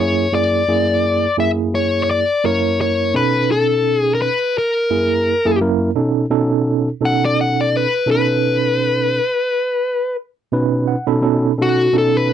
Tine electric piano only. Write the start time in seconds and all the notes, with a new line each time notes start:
Already playing: F#2 A#3
0.00 E4 G#4
0.33 F#2 A#3 E4 G#4
0.68 F#2 A#3 E4 G#4
1.37 F#2 A#3 E4 G#4
2.44 F#2 A#3 E4 A#4
3.14 B2 C#4 D#4 A4
4.90 F#2 A#3 E4 G#4
5.45 F#2 A#3 E4 G#4
5.61 F#2 A#3 E4 A#4
5.95 B2 C#4 D#4 A4
6.30 B2 C#4 D#4 A4
7.01 B2 C#4 D#4 A4
8.06 B2 C#4 D#4 A4
10.52 B2 C#4 D#4 B4
10.88 F#5
11.07 B2 C#4 D#4 A4 B5
11.22 B2 C#4 D#4 A4
11.58 B2 C#4 D#4 A4
11.93 B2 C#4 D#4 A4